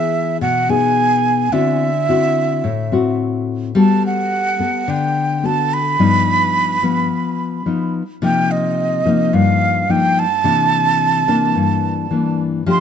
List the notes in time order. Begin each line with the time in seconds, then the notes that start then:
Already playing: E3 B3 G#4 E5
0.41 B2 F#5
0.69 B3 D#4 G#4 G#5
1.52 D3 C4 E4 F#4 E5
2.09 C4 E4 F#4
2.64 A2
2.92 C4 E4 F#4
3.75 G3 B3 F#4 A4 A5
4.06 F#5
4.59 B3 A4
4.88 D3 G5
5.43 B3 F#4 A4 A5
5.73 B5
5.99 G2 F3 B3 D#4
6.83 F3 B3
7.66 F3 B3 D#4
8.22 C3 F3 A#3 D#4 G5
8.51 D#5
9.05 F3 A#3 D#4
9.33 G2 F5
9.89 F3 A#3 D#4 G5
10.19 A5
10.44 C3 E3 A#3 D4
11.27 E3 A#3 D4
11.55 G2
12.11 E3 A#3 D4
12.66 F3 A3 D4 G4
12.71 C6